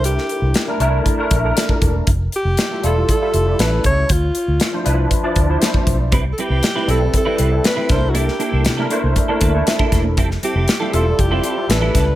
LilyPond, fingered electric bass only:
\new Staff \with { instrumentName = "Fingered electric bass" } { \clef bass \time 4/4 \key c \major \tempo 4 = 118 c,8 r16 c,16 r8 c,8 r8 bes,,8 r8 e,,8 | f,,8 r16 f,,16 r8 e,,8 r8 f,,8 a,,8 cis,8 | d,8 r16 d,16 r8 c,8 r8 d,8 r8 b,,8 | c,8 r16 c,16 r8 b,,8 r8 c,8 r8 c,8~ |
c,8 r16 c,16 c8 r16 c,16 r8 d,8 r8 e,,8 | f,,8 r16 f,,16 r8 e,,8 f,,8 r8 a,,8 cis,8 | }